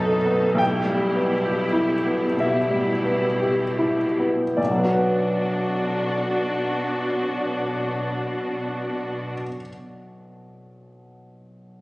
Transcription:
Already playing: F#2 B2 A3 B3 D#4 A4 A5
0.25 B3
0.55 B1 G5
0.60 E4 G4
0.85 G3
1.15 B3
1.45 G4
1.73 E4
2.06 B3
2.37 B2 E4 G4 E5
2.70 G3
3.05 B3
3.40 G4
3.79 E4
4.19 B3
4.57 B1 B2 D4 F#4 D5
4.64 B2
4.71 F#3
4.78 B3
4.85 F#4
4.92 B4

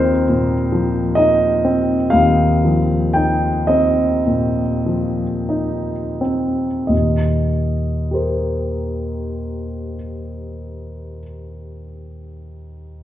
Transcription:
Already playing: D#2 F3 C4 D#4 A#4 C5
0.29 A#2
0.72 F3
1.15 D#4 D#5
1.64 C4
2.10 D#2 F5
2.65 F3
3.14 D#4 G5
3.67 C4 D#5
4.27 A#2
4.86 F3
5.49 D#4
6.21 C4
6.87 D#2 A#2 D#5
8.11 G4 A#4 C5

